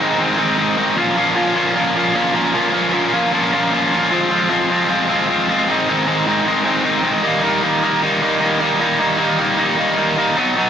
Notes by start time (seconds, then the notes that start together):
0.00 G#2 D#3 G#3 C4 D#4
0.18 G#2 D#3 G#3 C4 D#4
0.37 G#2 D#3 G#3 C4 D#4
0.57 G#2 D#3 G#3 C4 D#4
0.77 G#2 D#3 G#3 C4 D#4
0.96 A#2 F3 A#3 C#4 F4
1.15 A#2 F3 A#3 C#4 F4
1.35 A#2 F3 A#3 C#4 F4
1.55 A#2 F3 A#3 C#4 F4
1.75 A#2 F3 A#3 C#4 F4
1.95 A#2 F3 A#3 C#4 F4
2.14 A#2 F3 A#3 C#4 F4
2.33 A#2 F3 A#3 C#4 F4
2.54 A#2 F3 A#3 C#4 F4
2.73 A#2 F3 A#3 C#4 F4
2.93 A#2 F3 A#3 C#4 F4
3.13 A#2 F3 A#3 C#4 F4
3.32 A#2 F3 A#3 C#4 F4
3.52 A#2 F3 A#3 C#4 F4
3.72 A#2 F3 A#3 C#4 F4
3.92 A#2 F3 A#3 C#4 F4
4.11 F3 G#3 C4 F4
4.31 F3 G#3 C4 F4
4.50 F3 G#3 C4 F4
4.71 F3 G#3 C4 F4
4.89 F3 G#3 C4 F4
5.09 F3 G#3 C4 F4
5.28 F3 G#3 C4 F4
5.49 F3 G#3 C4 F4
5.68 G#2 D#3 G#3 C4 D#4
5.88 G#2 D#3 G#3 C4 D#4
6.07 G#2 D#3 G#3 C4 D#4
6.27 G#2 D#3 G#3 C4 D#4
6.46 G#2 D#3 G#3 C4 D#4
6.65 G#2 D#3 G#3 C4 D#4
6.84 G#2 D#3 G#3 C4 D#4
7.03 G#2 D#3 G#3 C4 D#4
7.23 D#3 G3 A#3 D#4
7.43 D#3 G3 A#3 D#4
7.63 D#3 G3 A#3 D#4
7.83 D#3 G3 A#3 D#4
8.02 D#3 G3 A#3 D#4
8.21 D#3 G3 A#3 D#4
8.41 D#3 G3 A#3 D#4
8.60 D#3 G3 A#3 D#4
8.80 D#3 G3 A#3 D#4
9.00 D#3 G3 A#3 D#4
9.19 D#3 G3 A#3 D#4
9.39 D#3 G3 A#3 D#4
9.58 D#3 G3 A#3 D#4
9.77 D#3 G3 A#3 D#4
9.97 D#3 G3 A#3 D#4
10.17 D#3 G3 A#3 D#4
10.37 B2 F#3 B3 D#4
10.56 B2 F#3 B3 D#4